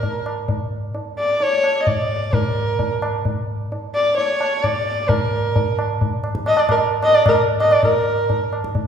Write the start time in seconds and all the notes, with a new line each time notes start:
Already playing: A#4
0.03 tabla tin, tabla ge
0.26 tabla na
0.48 tabla tin, tabla ge
0.95 tabla tin
1.19 D5
1.40 C#5, tabla tin
1.64 tabla na
1.82 D#5
1.87 D5, tabla tin, tabla ge
2.33 A#4, tabla tin, tabla ge
2.79 tabla tin, tabla ge
3.02 tabla na
3.25 tabla tin, tabla ge
3.72 tabla tin
3.95 D5
4.18 C#5, tabla tin
4.41 tabla na
4.63 D5, tabla tin, tabla ge
5.08 A#4, tabla tin, tabla ge
5.56 tabla tin, tabla ge
5.79 tabla na
6.01 tabla tin, tabla ge
6.24 tabla na
6.35 tabla ke
6.46 D#5, tabla na
6.57 D5, tabla na
6.69 A#4, tabla na, tabla ge
7.03 D#5, tabla na
7.15 D5, tabla na
7.26 A#4, tabla na, tabla ge
7.60 D#5, tabla na
7.71 D5, tabla na
7.83 A#4, tabla tin, tabla ge
8.30 tabla tin, tabla ge
8.53 tabla na
8.64 tabla ke
8.75 tabla tin, tabla ge